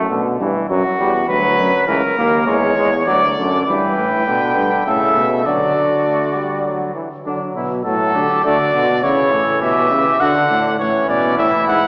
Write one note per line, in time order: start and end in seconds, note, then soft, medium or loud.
0.10 0.39 B2 medium
0.10 0.39 D3 medium
0.40 0.54 G2 medium
0.40 0.69 E3 medium
0.69 0.83 F#2 medium
0.69 0.83 F#3 medium
0.69 1.24 F#4 medium
0.99 1.28 E2 medium
0.99 1.13 G3 medium
1.29 1.58 D2 medium
1.29 1.87 F#3 medium
1.29 1.87 B4 loud
1.58 1.71 F#2 medium
1.87 2.01 C#2 medium
1.87 2.01 E3 medium
1.87 2.46 A#4 medium
2.17 2.46 D#2 medium
2.17 2.46 A#3 medium
2.46 2.76 E2 medium
2.46 2.76 G#3 medium
2.46 3.05 C#5 medium
2.77 3.07 E2 medium
2.77 2.91 G#3 medium
3.06 3.39 D2 medium
3.06 3.21 F#3 medium
3.06 3.65 D5 loud
3.38 3.67 F#2 medium
3.38 3.66 D3 medium
3.67 3.95 G2 medium
3.67 4.23 E3 medium
3.67 4.83 B4 medium
3.67 4.83 G5 medium
3.97 4.26 A2 medium
4.27 4.56 B2 medium
4.27 4.86 D3 medium
4.57 4.70 G2 medium
4.86 5.16 A2 medium
4.86 5.49 C#3 medium
4.86 5.45 A4 medium
4.86 5.48 E5 medium
5.17 5.45 B2 medium
5.46 6.92 D3 medium
5.46 5.76 F#3 medium
5.46 6.93 F#4 medium
5.46 6.96 D5 medium
5.77 5.90 F#3 medium
6.06 6.37 A3 medium
6.36 6.67 G3 medium
6.66 6.95 F#3 medium
6.95 7.09 E3 soft
7.26 7.39 D3 medium
7.26 7.82 F#3 medium
7.26 7.39 D4 medium
7.56 7.87 B2 medium
7.56 7.69 E4 medium
7.85 8.14 A2 medium
7.85 8.44 F#3 medium
7.85 8.16 F#4 medium
7.85 8.40 A4 medium
8.15 8.28 D3 medium
8.15 8.44 G4 medium
8.44 8.73 D3 medium
8.44 8.58 A3 medium
8.44 9.02 F#4 medium
8.44 9.05 D5 medium
8.74 9.05 B2 medium
8.74 8.87 D3 medium
9.03 9.31 C#3 medium
9.03 10.19 E3 medium
9.03 9.33 E4 medium
9.03 9.62 C#5 medium
9.32 9.63 A2 medium
9.32 9.63 A4 medium
9.62 9.90 B2 medium
9.62 9.92 G4 medium
9.62 10.22 E5 medium
9.91 10.04 C#3 medium
9.91 10.20 G4 medium
10.20 10.50 D3 medium
10.20 10.79 D3 medium
10.20 10.34 F#4 medium
10.20 10.79 F#5 medium
10.50 10.79 A2 medium
10.50 10.65 D4 medium
10.79 11.09 A2 medium
10.79 11.88 E3 medium
10.79 11.40 C#4 medium
10.79 11.08 C#5 medium
11.09 11.38 B2 medium
11.09 11.37 D5 medium
11.38 11.52 A2 medium
11.38 11.88 E4 medium
11.38 11.67 E5 medium
11.67 11.81 G#2 medium
11.67 11.88 F#5 medium